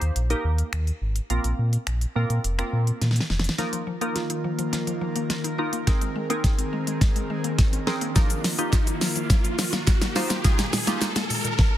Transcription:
Already playing: A#3 D#4 G4 C5
0.01 D#2, closed hi-hat
0.16 A#1, closed hi-hat
0.30 A#3 D#4 G4 A#4, closed hi-hat
0.44 D#2
0.58 closed hi-hat
0.73 D#2, finger snap, closed hi-hat
0.87 closed hi-hat
1.01 G#1
1.16 closed hi-hat
1.30 A#1 A#3 C4 F4 A#4, closed hi-hat
1.44 A#1, closed hi-hat
1.58 A#2
1.73 closed hi-hat
1.87 A#1, finger snap, closed hi-hat
2.01 closed hi-hat
2.16 A#2 A#3 C4 F4 A#4
2.30 A#2, closed hi-hat
2.44 F1, closed hi-hat
2.58 A#3 C4 F4 A#4, finger snap, closed hi-hat
2.73 A#2
2.87 closed hi-hat
3.01 A#2, snare, closed hi-hat
3.11 snare
3.16 closed hi-hat
3.20 snare
3.30 F1, snare
3.39 snare
3.44 closed hi-hat
3.49 snare
3.58 D#3 F3 A#3 D#4 F4 A#4, snare, closed hi-hat, riser
3.73 F3, closed hi-hat
3.87 F3
4.01 A#3 D#4 F4 A#4, closed hi-hat
4.16 F4, snare, closed hi-hat
4.30 D#4, closed hi-hat
4.44 F3
4.59 F3, closed hi-hat
4.73 F3, snare, closed hi-hat
4.87 F3, closed hi-hat
5.01 F3
5.16 A#3, closed hi-hat
5.30 F4, snare, closed hi-hat
5.44 D#4, closed hi-hat
5.58 A#3 D#4 F4 A#4
5.73 A#3, closed hi-hat
5.87 D#3 G#3 C4 D#4 G#4 A#4, kick, snare, closed hi-hat
6.01 G#3, closed hi-hat
6.16 G#3
6.30 A#3 C4 D#4 G#4 A#4, closed hi-hat
6.44 G#4, kick, snare, closed hi-hat
6.59 C4, closed hi-hat
6.73 G#3
6.87 G#3, closed hi-hat
7.01 G#3, kick, snare, closed hi-hat
7.16 G#3, closed hi-hat
7.30 G#3
7.44 A#3, closed hi-hat
7.58 G#4, kick, snare, closed hi-hat
7.73 C4, closed hi-hat
7.87 C4 D#4 G#4 A#4, snare
8.01 A#3, closed hi-hat
8.15 F3 A#3 D#4 F4 A#4, kick, snare, closed hi-hat, shaker
8.30 F3, closed hi-hat, shaker
8.44 F3, snare, open hi-hat, shaker
8.58 A#3 D#4 F4 G4, closed hi-hat, shaker
8.73 F4, kick, snare, clap, closed hi-hat, shaker
8.87 D#4, closed hi-hat, shaker
9.01 F3, snare, open hi-hat, shaker
9.16 F3, closed hi-hat, shaker
9.30 F3, kick, snare, closed hi-hat, shaker
9.44 F3, closed hi-hat, shaker
9.59 F3, snare, open hi-hat, shaker
9.73 A#3, snare, closed hi-hat, shaker
9.87 F4, kick, snare, clap, closed hi-hat, shaker
10.01 D#4, snare, closed hi-hat, shaker
10.16 A#3 D#4 F4 C5, snare, open hi-hat, shaker
10.30 A#3, snare, closed hi-hat, shaker
10.44 A#2 G#3 A#3 D#4 F4 G#4, kick, snare, closed hi-hat, shaker
10.59 A#2, snare, closed hi-hat, shaker
10.73 A#2, snare, open hi-hat, shaker
10.87 G#3 A#3 D#4 F4 G4, snare, closed hi-hat, shaker
11.02 D#4, snare, clap, closed hi-hat, shaker
11.16 A#3, snare, closed hi-hat, shaker
11.30 A#2, open hi-hat, shaker
11.44 A#2, closed hi-hat, shaker
11.59 kick, snare

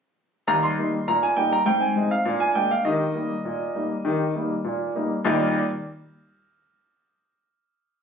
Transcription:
0.48 D#2 G3 A#5
0.63 C6
0.78 G3 A#3 D#4
1.08 A#2 A#5
1.23 G#5
1.36 G3 A#3 D#4 G5
1.53 A#5
1.66 G#2 C4 G5
1.81 G#5
1.96 G#3 C4 D#4
2.11 F5
2.25 A#2 D4
2.40 G#5
2.55 G#3 A#3 D4 G5
2.71 F5
2.85 D#3 G4 D#5
3.14 G3 A#3 D#4
3.45 A#2
3.75 G3 A#3 D#4
4.05 D#3 G4
4.35 G3 A#3 D#4
4.64 A#2
4.95 G3 A#3 D#4
5.25 D#2 A#2 G3 A#3 D#4 G4

